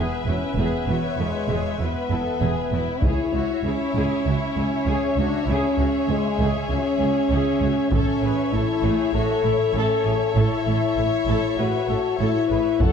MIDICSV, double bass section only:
0, 0, Header, 1, 2, 480
1, 0, Start_track
1, 0, Tempo, 610998
1, 458, Time_signature, 4, 2, 24, 8
1, 10153, End_track
2, 0, Start_track
2, 0, Title_t, "Double bass section"
2, 0, Program_c, 0, 48
2, 205, Note_on_c, 0, 28, 29
2, 268, Note_off_c, 0, 28, 0
2, 441, Note_on_c, 0, 28, 49
2, 504, Note_off_c, 0, 28, 0
2, 687, Note_on_c, 0, 28, 33
2, 750, Note_off_c, 0, 28, 0
2, 926, Note_on_c, 0, 28, 36
2, 989, Note_off_c, 0, 28, 0
2, 1168, Note_on_c, 0, 28, 53
2, 1231, Note_off_c, 0, 28, 0
2, 1411, Note_on_c, 0, 28, 33
2, 1474, Note_off_c, 0, 28, 0
2, 1654, Note_on_c, 0, 28, 40
2, 1717, Note_off_c, 0, 28, 0
2, 1897, Note_on_c, 0, 28, 51
2, 1960, Note_off_c, 0, 28, 0
2, 2134, Note_on_c, 0, 28, 34
2, 2197, Note_off_c, 0, 28, 0
2, 2380, Note_on_c, 0, 37, 53
2, 2443, Note_off_c, 0, 37, 0
2, 2618, Note_on_c, 0, 37, 38
2, 2680, Note_off_c, 0, 37, 0
2, 2858, Note_on_c, 0, 37, 36
2, 2921, Note_off_c, 0, 37, 0
2, 3103, Note_on_c, 0, 37, 64
2, 3166, Note_off_c, 0, 37, 0
2, 3341, Note_on_c, 0, 37, 39
2, 3403, Note_off_c, 0, 37, 0
2, 3582, Note_on_c, 0, 37, 41
2, 3645, Note_off_c, 0, 37, 0
2, 3819, Note_on_c, 0, 37, 54
2, 3882, Note_off_c, 0, 37, 0
2, 4059, Note_on_c, 0, 37, 39
2, 4122, Note_off_c, 0, 37, 0
2, 4297, Note_on_c, 0, 37, 58
2, 4359, Note_off_c, 0, 37, 0
2, 4541, Note_on_c, 0, 37, 38
2, 4604, Note_off_c, 0, 37, 0
2, 4778, Note_on_c, 0, 37, 42
2, 4841, Note_off_c, 0, 37, 0
2, 5017, Note_on_c, 0, 37, 64
2, 5080, Note_off_c, 0, 37, 0
2, 5253, Note_on_c, 0, 37, 42
2, 5315, Note_off_c, 0, 37, 0
2, 5491, Note_on_c, 0, 37, 45
2, 5554, Note_off_c, 0, 37, 0
2, 5737, Note_on_c, 0, 37, 66
2, 5800, Note_off_c, 0, 37, 0
2, 5974, Note_on_c, 0, 37, 36
2, 6036, Note_off_c, 0, 37, 0
2, 6213, Note_on_c, 0, 33, 65
2, 6275, Note_off_c, 0, 33, 0
2, 6455, Note_on_c, 0, 33, 42
2, 6518, Note_off_c, 0, 33, 0
2, 6698, Note_on_c, 0, 33, 47
2, 6761, Note_off_c, 0, 33, 0
2, 6931, Note_on_c, 0, 33, 66
2, 6994, Note_off_c, 0, 33, 0
2, 7174, Note_on_c, 0, 33, 43
2, 7237, Note_off_c, 0, 33, 0
2, 7414, Note_on_c, 0, 33, 44
2, 7477, Note_off_c, 0, 33, 0
2, 7654, Note_on_c, 0, 33, 54
2, 7717, Note_off_c, 0, 33, 0
2, 7902, Note_on_c, 0, 33, 34
2, 7965, Note_off_c, 0, 33, 0
2, 8137, Note_on_c, 0, 33, 61
2, 8200, Note_off_c, 0, 33, 0
2, 8374, Note_on_c, 0, 33, 42
2, 8437, Note_off_c, 0, 33, 0
2, 8613, Note_on_c, 0, 33, 41
2, 8675, Note_off_c, 0, 33, 0
2, 8850, Note_on_c, 0, 33, 66
2, 8912, Note_off_c, 0, 33, 0
2, 9092, Note_on_c, 0, 33, 35
2, 9155, Note_off_c, 0, 33, 0
2, 9339, Note_on_c, 0, 33, 39
2, 9402, Note_off_c, 0, 33, 0
2, 9579, Note_on_c, 0, 33, 51
2, 9642, Note_off_c, 0, 33, 0
2, 9822, Note_on_c, 0, 33, 34
2, 9884, Note_off_c, 0, 33, 0
2, 10060, Note_on_c, 0, 30, 49
2, 10123, Note_off_c, 0, 30, 0
2, 10153, End_track
0, 0, End_of_file